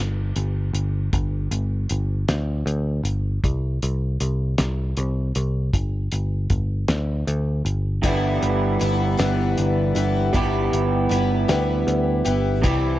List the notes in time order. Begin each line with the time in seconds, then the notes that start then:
Already playing: G1
0.36 G1, closed hi-hat
0.73 G1, closed hi-hat
1.13 G1, kick, closed hi-hat
1.51 G1, closed hi-hat
1.89 G1, closed hi-hat
2.28 D2, snare, closed hi-hat
2.66 D2, closed hi-hat
3.03 G1, closed hi-hat
3.44 C2, kick, closed hi-hat
3.82 C2, closed hi-hat
4.20 C2, closed hi-hat
4.58 C2, snare, closed hi-hat
4.97 C2, closed hi-hat
5.35 C2, closed hi-hat
5.73 G1, kick, closed hi-hat
6.12 G1, closed hi-hat
6.50 G1, kick, closed hi-hat
6.88 D2, snare, closed hi-hat
7.27 D2, closed hi-hat
7.65 G1, closed hi-hat
8.03 G1 G2 D3 E3 G3 B3 E4, kick, closed hi-hat
8.43 G1, closed hi-hat
8.79 G1 E3 G3 B3 E4, closed hi-hat
9.17 G1 G2 D3 E3 G3 B3 E4, snare, closed hi-hat
9.58 G1, closed hi-hat
9.95 G1 E3 G3 B3 E4, closed hi-hat
10.33 G1 G3 B3 E4 G4, kick, closed hi-hat
10.73 G1, closed hi-hat
11.09 G1 G3 B3 E4 G4, closed hi-hat
11.48 D2 G3 B3 E4 G4, snare, closed hi-hat
11.87 D2, closed hi-hat
12.25 G1 B3 E4 G4, closed hi-hat
12.63 C2 C3 E3 G3 E4 G4, kick, closed hi-hat